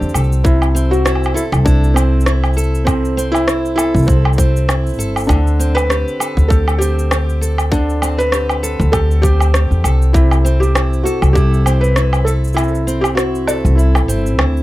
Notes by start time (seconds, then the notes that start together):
Already playing: D3 C4 G4 A4
0.01 E2, shaker
0.09 shaker
0.14 C2 A4, low woodblock, shaker
0.24 shaker
0.32 shaker
0.44 C3 E4, kick, shaker
0.62 low woodblock, shaker
0.75 C4, shaker
0.91 F#4, shaker
1.05 E4, cross-stick, low woodblock, shaker
1.15 low woodblock
1.24 low woodblock, shaker
1.34 E4 A4, shaker
1.52 C2, kick, low woodblock, shaker
1.65 D4 E4, kick, shaker
1.84 shaker
1.94 C4, low woodblock, shaker
2.21 shaker
2.26 E4, cross-stick, shaker
2.44 low woodblock, shaker
2.54 A4, shaker
2.58 shaker
2.75 shaker
2.85 C3 C4, kick, low woodblock, shaker
3.05 shaker
3.17 C4, shaker
3.32 E4, low woodblock, shaker
3.47 E4, cross-stick, shaker
3.65 shaker
3.76 E4 A4, low woodblock, shaker
3.95 C2, kick, shaker
3.98 shaker
4.02 shaker
4.05 C4, shaker
4.07 E4, kick, shaker
4.09 shaker
4.25 low woodblock
4.33 shaker
4.38 C4, kick, shaker
4.57 shaker
4.68 E4, cross-stick, low woodblock, shaker
4.87 shaker
4.89 shaker
4.93 shaker
4.96 shaker
4.98 G1 A4, shaker
5.00 shaker
5.16 low woodblock, shaker
5.19 shaker
5.24 shaker
5.26 D4, shaker
5.28 D2 D3, kick, low woodblock, shaker
5.30 shaker
5.47 shaker
5.59 C4, shaker
5.75 B4, low woodblock, shaker
5.90 G4, cross-stick, shaker
6.08 shaker
6.20 A4, low woodblock, shaker
6.37 D2, kick, shaker
6.48 G4 A4, kick, shaker
6.68 low woodblock, shaker
6.78 C4 G4, shaker
6.99 shaker
7.11 G4, cross-stick, low woodblock, shaker
7.29 shaker
7.41 A4, shaker
7.58 low woodblock, shaker
7.72 D3 D4, kick, shaker
7.90 shaker
8.02 C4, low woodblock, shaker
8.18 B4, shaker
8.32 G4, cross-stick, shaker
8.49 low woodblock, shaker
8.63 A4, shaker
8.80 D2, kick, shaker
8.92 G4 A4, kick, low woodblock, shaker
9.11 shaker
9.22 C4 G4, kick, shaker
9.40 low woodblock, shaker
9.54 G4, cross-stick, shaker
9.71 E2, shaker
9.84 C2 A4, low woodblock, shaker
10.02 shaker
10.13 C3 E4, kick, shaker
10.31 low woodblock, shaker
10.45 C4, shaker
10.60 G4, shaker
10.75 E4, cross-stick, low woodblock, shaker
10.93 shaker
11.03 F#4 A4, shaker
11.22 C2, kick, low woodblock, shaker
11.33 E4 G4, kick, shaker
11.54 shaker
11.66 C4, low woodblock, shaker
11.81 B4, shaker
11.96 E4, cross-stick, shaker
12.13 low woodblock, shaker
12.25 A4, shaker
12.44 shaker
12.47 shaker
12.53 C3 E4, low woodblock, shaker
12.58 shaker
12.63 shaker
12.68 shaker
12.75 shaker
12.87 C4, shaker
13.01 G4, low woodblock, shaker
13.15 E4 F#4, cross-stick, shaker
13.35 shaker
13.47 A4, low woodblock, shaker
13.65 C2, shaker
13.75 E4, shaker
13.95 cross-stick, low woodblock, shaker
14.08 G1 C4, shaker
14.26 shaker
14.39 D2 E4, cross-stick, low woodblock
14.57 shaker